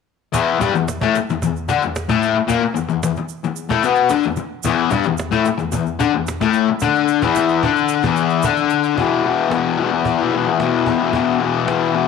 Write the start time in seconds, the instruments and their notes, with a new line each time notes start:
0.32 distorted electric guitar E2 E3, cajon bass, shaker
0.59 distorted electric guitar G2 G3, cajon bass, shaker
0.74 distorted electric guitar E2, shaker
0.88 cajon slap, shaker
1.01 distorted electric guitar A2 A3, cajon bass, shaker
1.15 muted distorted electric guitar stroke, shaker
1.29 distorted electric guitar E2, shaker
1.42 distorted electric guitar E2, cajon bass, shaker
1.56 shaker
1.68 distorted electric guitar D3 D4, cajon bass, shaker
1.81 distorted electric guitar E2, shaker
1.96 cajon slap, shaker
2.09 distorted electric guitar A2 A3, cajon bass, shaker
2.22 shaker
2.35 muted distorted electric guitar stroke
2.48 distorted electric guitar A#2 A#3, cajon bass, shaker
2.61 muted distorted electric guitar stroke
2.74 distorted electric guitar E2, shaker
2.89 distorted electric guitar E2, shaker
3.03 distorted electric guitar E2, cajon slap, shaker
3.16 muted distorted electric guitar stroke, shaker
3.29 shaker
3.44 distorted electric guitar E2, shaker
3.56 shaker
3.69 distorted electric guitar A2 A3, cajon bass, shaker
3.83 distorted electric guitar B2 B3, shaker
3.95 shaker
4.09 distorted electric guitar D3 D4, cajon slap, shaker
4.23 distorted electric guitar E2, shaker
4.36 muted distorted electric guitar stroke, shaker
4.63 distorted electric guitar E2 E3, cajon bass, shaker
4.90 distorted electric guitar G2 G3, cajon bass, shaker
5.04 distorted electric guitar E2, shaker
5.18 cajon slap, shaker
5.31 distorted electric guitar A2 A3, cajon bass, shaker
5.45 muted distorted electric guitar stroke, shaker
5.57 distorted electric guitar E2, shaker
5.72 distorted electric guitar E2, cajon bass, shaker
5.86 shaker
5.99 distorted electric guitar D3 D4, cajon bass, shaker
6.14 distorted electric guitar E2
6.27 cajon slap, shaker
6.41 distorted electric guitar A2 A3, cajon bass, shaker
6.53 shaker
6.69 muted distorted electric guitar stroke
6.80 distorted electric guitar D3 D4, cajon bass, shaker
6.95 shaker
7.08 shaker
7.22 distorted electric guitar E2 E3, cajon bass, shaker
7.35 cajon slap, shaker
7.49 shaker
7.63 distorted electric guitar D3 D4, cajon bass
7.76 shaker
7.88 shaker
8.02 distorted electric guitar E2 E3, cajon bass, shaker
8.16 shaker
8.30 shaker
8.42 distorted electric guitar D3 D4, cajon bass, shaker
8.57 shaker
8.70 shaker
8.83 shaker
8.95 distorted electric guitar E2 B2, cajon bass
9.00 distorted electric guitar E3
9.24 distorted electric guitar E2 B2
9.28 distorted electric guitar E3
9.50 distorted electric guitar E2 B2, cajon slap
9.55 distorted electric guitar E3
9.78 distorted electric guitar E2 B2
9.83 distorted electric guitar E3
9.92 muted distorted electric guitar stroke
10.05 cajon bass
10.18 distorted electric guitar E3
10.22 distorted electric guitar B2
10.32 distorted electric guitar E2 B2
10.37 distorted electric guitar E3
10.47 muted distorted electric guitar stroke
10.59 distorted electric guitar E2 B2 E3, cajon slap
10.85 distorted electric guitar E2 B2, cajon bass
10.90 distorted electric guitar E3
10.99 distorted electric guitar E3
11.04 distorted electric guitar B2
11.11 distorted electric guitar E2 B2, cajon bass
11.17 distorted electric guitar E3
11.40 distorted electric guitar E2 B2
11.44 distorted electric guitar E3
11.66 distorted electric guitar E2 B2, cajon slap
11.70 distorted electric guitar E3
11.92 distorted electric guitar E2 B2
11.96 distorted electric guitar E3